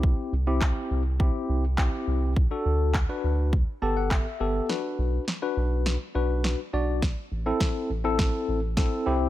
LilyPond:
<<
  \new Staff \with { instrumentName = "Tine electric piano" } { \time 4/4 \key a \dorian \tempo 4 = 103 << { r1 | r2 r8 a''16 fis''16 e''4 | r1 | r1 | } \\ { <c' e' g'>8 r16 <c' e' g'>4 r16 <c' e' g'>8. r16 <c' e' g'>4 | r16 <d' fis' a'>8. r16 <d' fis' b'>8. r8 <b g' a'>8. r16 <b g' a'>8 | <d' fis' b'>4 r16 <d' fis' b'>4 r16 <d' fis' b'>8. r16 <d' fis' d''>8 | r8. <c' e' a'>8. r16 <c' e' a'>4 r16 <c' e' a'>8 <c' e' g'>8 | } >> }
  \new Staff \with { instrumentName = "Analog synth bass" } { \clef bass \time 4/4 \key a \dorian c,8 c,4 c,4 c,4 c,8~ | c,8 d,4 d,4 g,,4 g,,8 | r8 b,,8 r8 b,,4 b,,4 b,,8~ | b,,8 a,,8 r8 a,,4 a,,4 c,8 | }
  \new DrumStaff \with { instrumentName = "Drums" } \drummode { \time 4/4 bd4 <hc bd>4 bd4 <hc bd>4 | bd4 <hc bd>4 bd4 <hc bd>4 | sn4 sn4 sn4 sn4 | <bd sn>4 <bd sn>4 <bd sn>4 <bd sn>4 | }
>>